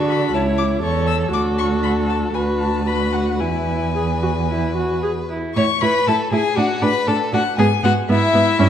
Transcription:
0.00 0.33 D3 medium
0.00 0.35 F#4 medium
0.00 0.35 A4 medium
0.09 0.33 B5 medium
0.33 0.82 C#2 medium
0.33 0.82 E4 medium
0.33 0.83 C#5 soft
0.33 0.42 A5 medium
0.58 0.66 D6 medium
0.82 1.32 E2 medium
0.82 1.32 A4 medium
0.82 1.33 C#5 soft
0.82 1.06 C#6 medium
1.07 1.15 E6 medium
1.32 2.31 D2 medium
1.32 2.31 F#4 medium
1.32 2.36 A4 medium
1.32 1.41 D6 medium
1.58 1.67 C#6 medium
1.83 1.91 B5 medium
2.09 2.17 A5 medium
2.34 3.42 D2 medium
2.34 2.86 F#4 soft
2.34 2.86 B4 soft
2.34 2.42 G#5 medium
2.59 2.88 A5 medium
2.87 3.42 F#4 soft
2.87 3.39 B4 soft
2.87 3.14 B5 medium
3.13 3.41 F#5 medium
3.39 5.36 E2 medium
3.39 3.90 E4 soft
3.39 5.31 B4 soft
3.39 5.03 G#5 medium
3.96 4.04 G#4 soft
4.23 4.31 F#4 soft
4.50 4.75 E4 medium
4.76 5.02 F#4 soft
5.03 5.11 G#4 medium
5.30 5.56 E4 soft
5.55 5.64 A2 medium
5.55 5.64 E4 medium
5.55 5.64 C#5 medium
5.55 5.83 C#6 medium
5.82 5.90 A2 medium
5.82 5.90 E4 medium
5.82 6.09 B4 medium
5.82 6.07 B5 medium
6.07 6.15 A2 medium
6.07 6.16 E4 soft
6.07 6.32 A4 medium
6.07 6.15 A5 medium
6.32 6.40 A2 medium
6.32 6.41 E4 medium
6.32 6.59 G#4 medium
6.32 6.59 G#5 medium
6.57 6.65 A2 medium
6.57 6.65 D4 medium
6.57 6.84 F#4 medium
6.57 6.82 F#5 medium
6.81 6.90 A2 medium
6.81 6.89 D4 medium
6.81 7.09 B4 medium
6.81 7.08 B5 medium
7.07 7.16 A2 medium
7.07 7.15 D4 medium
7.07 7.33 A4 medium
7.07 7.16 A5 medium
7.33 7.41 A2 medium
7.33 7.41 D4 soft
7.33 7.41 F#4 medium
7.33 7.58 F#5 medium
7.58 7.66 G#2 medium
7.58 7.66 B3 medium
7.58 7.67 G#4 medium
7.58 7.83 G#5 medium
7.83 7.91 G#2 medium
7.83 7.92 B3 medium
7.83 7.93 F#4 medium
7.83 7.92 F#5 loud
8.09 8.17 G#2 medium
8.09 8.17 B3 medium
8.09 8.69 E4 medium
8.09 8.69 E5 medium
8.34 8.42 G#2 medium
8.34 8.42 B3 medium
8.59 8.67 G2 medium
8.59 8.67 C#4 medium

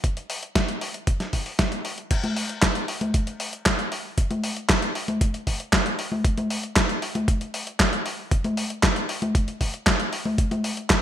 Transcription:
0.04 kick loud
0.04 closed hi-hat medium
0.17 closed hi-hat soft
0.30 open hi-hat loud
0.43 closed hi-hat soft
0.55 kick loud
0.55 snare loud
0.55 closed hi-hat medium
0.68 closed hi-hat soft
0.81 open hi-hat loud
0.94 closed hi-hat soft
1.07 kick loud
1.07 closed hi-hat loud
1.20 snare soft
1.20 closed hi-hat soft
1.33 kick medium
1.33 open hi-hat loud
1.46 open hi-hat medium
1.59 kick loud
1.59 snare loud
1.59 closed hi-hat loud
1.72 closed hi-hat soft
1.85 open hi-hat loud
1.98 closed hi-hat soft
2.11 kick loud
2.11 closed hi-hat loud
2.11 crash loud
2.24 closed hi-hat soft
2.24 high conga medium
2.36 open hi-hat loud
2.49 closed hi-hat soft
2.62 kick loud
2.62 snare loud
2.62 clap loud
2.62 closed hi-hat medium
2.75 closed hi-hat soft
2.88 open hi-hat loud
3.01 closed hi-hat soft
3.01 high conga medium
3.14 kick loud
3.14 closed hi-hat loud
3.27 closed hi-hat soft
3.40 open hi-hat loud
3.53 closed hi-hat soft
3.66 kick loud
3.66 snare loud
3.66 clap loud
3.66 closed hi-hat loud
3.79 closed hi-hat soft
3.92 open hi-hat loud
4.18 kick loud
4.18 closed hi-hat loud
4.31 closed hi-hat soft
4.31 high conga medium
4.44 open hi-hat loud
4.57 closed hi-hat soft
4.69 kick loud
4.69 snare loud
4.69 clap loud
4.69 closed hi-hat medium
4.82 closed hi-hat soft
4.95 open hi-hat loud
5.08 closed hi-hat soft
5.08 high conga medium
5.21 kick loud
5.21 closed hi-hat medium
5.34 closed hi-hat soft
5.47 kick medium
5.47 open hi-hat loud
5.60 closed hi-hat soft
5.73 kick loud
5.73 snare loud
5.73 clap loud
5.73 closed hi-hat medium
5.86 closed hi-hat soft
5.99 open hi-hat loud
6.12 high conga medium
6.25 kick loud
6.25 closed hi-hat loud
6.38 closed hi-hat soft
6.38 high conga medium
6.50 open hi-hat loud
6.63 closed hi-hat soft
6.76 kick loud
6.76 snare loud
6.76 clap loud
6.76 closed hi-hat medium
6.89 closed hi-hat soft
7.02 open hi-hat loud
7.15 closed hi-hat soft
7.15 high conga medium
7.28 kick loud
7.28 closed hi-hat medium
7.41 closed hi-hat soft
7.54 open hi-hat loud
7.67 closed hi-hat soft
7.80 kick loud
7.80 snare loud
7.80 clap loud
7.80 closed hi-hat loud
7.93 closed hi-hat soft
8.06 open hi-hat loud
8.31 kick loud
8.31 closed hi-hat medium
8.44 closed hi-hat soft
8.44 high conga medium
8.57 open hi-hat loud
8.70 closed hi-hat soft
8.83 kick loud
8.83 snare loud
8.83 clap loud
8.83 closed hi-hat medium
8.96 closed hi-hat soft
9.09 open hi-hat loud
9.22 closed hi-hat soft
9.22 high conga medium
9.35 kick loud
9.35 closed hi-hat medium
9.48 closed hi-hat soft
9.61 kick medium
9.61 open hi-hat loud
9.74 closed hi-hat soft
9.87 kick loud
9.87 snare loud
9.87 clap loud
9.87 closed hi-hat medium
10.00 closed hi-hat soft
10.13 open hi-hat loud
10.25 high conga medium
10.38 kick loud
10.38 closed hi-hat medium
10.51 closed hi-hat soft
10.51 high conga medium
10.64 open hi-hat loud
10.77 closed hi-hat soft
10.90 kick loud
10.90 snare loud
10.90 clap loud
10.90 closed hi-hat medium

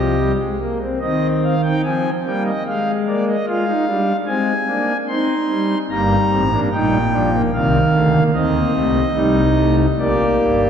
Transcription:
0.00 0.32 C2 medium
0.00 0.32 C3 medium
0.00 0.16 F3 soft
0.00 0.32 G4 medium
0.00 0.32 D#5 medium
0.19 0.37 G3 soft
0.39 0.58 G#3 soft
0.60 0.78 A#3 medium
0.82 0.99 C4 medium
1.01 1.73 D#3 medium
1.01 1.55 C4 medium
1.01 1.27 D#5 medium
1.43 1.61 F5 medium
1.63 1.82 D#4 medium
1.63 1.81 G5 medium
1.84 2.10 F3 medium
1.84 2.10 C4 medium
1.84 2.10 G#5 medium
2.25 2.51 G3 medium
2.25 2.51 A#3 medium
2.25 2.43 G5 medium
2.45 2.63 D#5 medium
2.65 3.36 G#3 medium
2.65 2.92 F5 medium
3.07 3.33 A#3 medium
3.07 3.25 D5 medium
3.28 3.45 D#5 medium
3.47 3.72 G#3 medium
3.47 3.65 F4 medium
3.47 4.17 F5 medium
3.68 3.85 D#4 medium
3.87 4.12 G3 medium
3.87 4.13 D4 medium
4.27 4.52 G#3 medium
4.27 4.52 C4 medium
4.27 4.97 G#5 medium
4.67 4.93 A#3 medium
4.67 4.93 D4 medium
5.08 5.34 C4 medium
5.08 5.78 D#4 medium
5.08 5.78 C6 medium
5.49 5.75 G3 medium
5.90 6.16 G1 medium
5.90 6.16 G2 medium
5.90 6.43 G3 medium
5.90 6.15 A#3 medium
5.90 6.60 A#5 medium
6.31 6.56 A1 medium
6.31 6.56 A2 medium
6.31 6.48 C4 medium
6.52 6.69 A#3 medium
6.52 6.69 D4 medium
6.72 7.42 A#1 medium
6.72 7.42 A#2 medium
6.72 6.97 G3 medium
6.72 6.97 D#4 medium
6.72 7.42 G5 medium
7.12 7.37 F3 medium
7.12 7.29 D4 medium
7.33 7.50 A#3 medium
7.53 7.79 C2 medium
7.53 7.78 C3 medium
7.53 8.23 D#3 medium
7.53 7.78 C4 medium
7.53 8.23 F5 medium
7.94 8.19 D2 medium
7.94 8.19 D3 medium
7.94 8.11 A3 medium
8.14 8.31 A#3 medium
8.34 8.60 D#2 medium
8.34 8.59 D#3 medium
8.34 9.05 C4 medium
8.34 9.76 D#5 medium
8.54 8.72 A#3 medium
8.74 9.00 C2 medium
8.74 9.00 C3 medium
8.74 9.00 A3 medium
9.14 9.86 C2 medium
9.14 9.86 C3 medium
9.14 9.40 G3 medium
9.14 9.86 D#4 medium
9.57 9.83 A3 medium
9.99 10.25 A#1 medium
9.99 10.25 A#2 medium
9.99 10.70 A#3 medium
9.99 10.70 G4 medium
9.99 10.70 D5 medium
10.40 10.66 G1 medium
10.40 10.66 G2 medium

